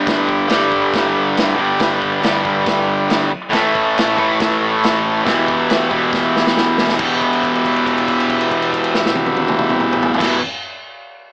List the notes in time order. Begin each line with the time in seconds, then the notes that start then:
Already playing: G2 D3 G3 B4 D5 G5
0.07 kick, snare, crash
0.29 kick
0.48 G2 D3 G3, snare, crash
0.72 kick
0.94 kick, snare, crash
1.37 snare, crash
1.56 G2 D3 G3
1.79 kick, snare, crash
2.02 kick
2.21 G2 D3, snare, crash
2.25 G3
2.45 kick
2.66 kick, snare, crash
3.10 snare, crash
3.50 A2 E3 A3 A4 C#5 E5, kick, crash
3.54 snare
3.75 kick
3.98 snare, crash
4.16 A2 E3 A3, kick
4.40 kick, snare, crash
4.84 snare, crash
5.24 E2 B2 E3 G4 B4 E5, kick, snare, crash
5.48 kick
5.70 snare, crash
5.90 E2 B2 E3, kick
6.13 kick, snare
6.36 snare
6.47 snare
6.57 G5, snare
6.76 E5, snare
6.89 snare
6.97 E2 B2 E3, kick, crash
7.01 G4 B4 E5
7.21 kick, crash
7.33 crash
7.43 kick, crash
7.55 crash
7.65 kick, crash
7.76 crash
7.86 kick, crash
7.98 crash
8.08 kick, crash
8.20 crash
8.30 kick, crash
8.41 crash
8.51 kick, crash
8.62 crash
8.73 kick, crash
8.84 crash
8.95 snare
9.06 snare
9.15 high tom
9.26 high tom
9.37 high tom
9.48 mid tom
9.59 mid tom
9.70 mid tom
9.80 mid tom
9.93 mid tom
10.03 floor tom
10.14 E2, floor tom
10.19 B2 E3 G4 B4 E5, kick, snare, crash